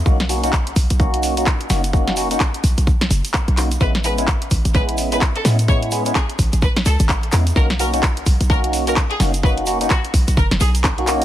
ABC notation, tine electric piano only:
X:1
M:4/4
L:1/16
Q:"Swing 16ths" 1/4=128
K:Bdor
V:1 name="Tine electric piano"
[^A,C^DF] z [A,CDF] [A,CDF] z4 [A,CDF]3 [A,CDF] z2 [A,CDF] z | [^A,C^DF]2 [A,CDF] [A,CDF] z8 z2 [A,CDF] z | [G,B,CE] z [G,B,CE] [G,B,CE] z4 [G,B,CE]3 [G,B,CE] z2 [G,B,CE] z | [G,B,CE]2 [G,B,CE] [G,B,CE] z8 z2 [G,B,CE] z |
[^A,C^DF] z [A,CDF] [A,CDF] z4 [A,CDF]3 [A,CDF] z2 [A,CDF] z | [^A,C^DF]2 [A,CDF] [A,CDF] z8 z [A,CDF] [A,CDF]2 |]